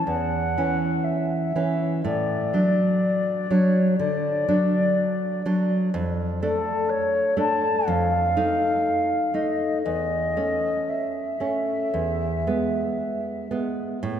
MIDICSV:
0, 0, Header, 1, 3, 480
1, 0, Start_track
1, 0, Key_signature, 3, "major"
1, 0, Tempo, 983607
1, 999, Time_signature, 4, 2, 24, 8
1, 2429, Tempo, 953895
1, 3389, Tempo, 981997
1, 4349, Tempo, 1006711
1, 4829, Tempo, 1041667
1, 6830, End_track
2, 0, Start_track
2, 0, Title_t, "Flute"
2, 0, Program_c, 0, 73
2, 32, Note_on_c, 0, 78, 52
2, 506, Note_on_c, 0, 76, 38
2, 513, Note_off_c, 0, 78, 0
2, 994, Note_off_c, 0, 76, 0
2, 999, Note_on_c, 0, 74, 49
2, 1709, Note_on_c, 0, 73, 48
2, 1716, Note_off_c, 0, 74, 0
2, 1938, Note_off_c, 0, 73, 0
2, 1941, Note_on_c, 0, 74, 53
2, 2650, Note_off_c, 0, 74, 0
2, 3156, Note_on_c, 0, 69, 49
2, 3392, Note_on_c, 0, 73, 57
2, 3399, Note_off_c, 0, 69, 0
2, 3629, Note_off_c, 0, 73, 0
2, 3633, Note_on_c, 0, 81, 55
2, 3872, Note_on_c, 0, 77, 59
2, 3879, Note_off_c, 0, 81, 0
2, 4583, Note_on_c, 0, 75, 46
2, 4590, Note_off_c, 0, 77, 0
2, 4809, Note_off_c, 0, 75, 0
2, 4812, Note_on_c, 0, 75, 52
2, 5305, Note_on_c, 0, 76, 38
2, 5312, Note_off_c, 0, 75, 0
2, 6510, Note_off_c, 0, 76, 0
2, 6830, End_track
3, 0, Start_track
3, 0, Title_t, "Nylon-string guitar"
3, 0, Program_c, 1, 24
3, 33, Note_on_c, 1, 40, 30
3, 268, Note_off_c, 1, 40, 0
3, 281, Note_on_c, 1, 52, 29
3, 284, Note_on_c, 1, 61, 34
3, 740, Note_off_c, 1, 52, 0
3, 741, Note_off_c, 1, 61, 0
3, 759, Note_on_c, 1, 52, 29
3, 762, Note_on_c, 1, 61, 29
3, 981, Note_off_c, 1, 52, 0
3, 982, Note_off_c, 1, 61, 0
3, 998, Note_on_c, 1, 45, 38
3, 1231, Note_off_c, 1, 45, 0
3, 1237, Note_on_c, 1, 54, 29
3, 1240, Note_on_c, 1, 62, 30
3, 1687, Note_off_c, 1, 54, 0
3, 1688, Note_off_c, 1, 62, 0
3, 1710, Note_on_c, 1, 54, 32
3, 1712, Note_on_c, 1, 62, 33
3, 1929, Note_off_c, 1, 54, 0
3, 1930, Note_off_c, 1, 62, 0
3, 1949, Note_on_c, 1, 50, 40
3, 2184, Note_off_c, 1, 50, 0
3, 2188, Note_on_c, 1, 54, 37
3, 2189, Note_on_c, 1, 62, 41
3, 2647, Note_off_c, 1, 62, 0
3, 2648, Note_off_c, 1, 54, 0
3, 2670, Note_on_c, 1, 54, 35
3, 2673, Note_on_c, 1, 62, 39
3, 2887, Note_off_c, 1, 54, 0
3, 2888, Note_off_c, 1, 62, 0
3, 2913, Note_on_c, 1, 41, 47
3, 3142, Note_off_c, 1, 41, 0
3, 3157, Note_on_c, 1, 57, 35
3, 3158, Note_on_c, 1, 62, 37
3, 3613, Note_off_c, 1, 57, 0
3, 3613, Note_off_c, 1, 62, 0
3, 3624, Note_on_c, 1, 57, 38
3, 3629, Note_on_c, 1, 62, 41
3, 3846, Note_off_c, 1, 57, 0
3, 3848, Note_off_c, 1, 62, 0
3, 3873, Note_on_c, 1, 41, 48
3, 4103, Note_off_c, 1, 41, 0
3, 4113, Note_on_c, 1, 63, 40
3, 4115, Note_on_c, 1, 57, 34
3, 4568, Note_off_c, 1, 63, 0
3, 4570, Note_off_c, 1, 57, 0
3, 4582, Note_on_c, 1, 57, 31
3, 4585, Note_on_c, 1, 63, 33
3, 4807, Note_off_c, 1, 57, 0
3, 4808, Note_off_c, 1, 63, 0
3, 4829, Note_on_c, 1, 40, 40
3, 5059, Note_off_c, 1, 40, 0
3, 5064, Note_on_c, 1, 57, 28
3, 5067, Note_on_c, 1, 61, 31
3, 5527, Note_off_c, 1, 57, 0
3, 5528, Note_off_c, 1, 61, 0
3, 5541, Note_on_c, 1, 57, 27
3, 5545, Note_on_c, 1, 61, 29
3, 5768, Note_off_c, 1, 57, 0
3, 5770, Note_off_c, 1, 61, 0
3, 5787, Note_on_c, 1, 40, 36
3, 6023, Note_off_c, 1, 40, 0
3, 6034, Note_on_c, 1, 56, 28
3, 6035, Note_on_c, 1, 59, 31
3, 6492, Note_off_c, 1, 56, 0
3, 6493, Note_off_c, 1, 59, 0
3, 6512, Note_on_c, 1, 59, 29
3, 6516, Note_on_c, 1, 56, 25
3, 6731, Note_off_c, 1, 59, 0
3, 6733, Note_off_c, 1, 56, 0
3, 6751, Note_on_c, 1, 45, 45
3, 6830, Note_off_c, 1, 45, 0
3, 6830, End_track
0, 0, End_of_file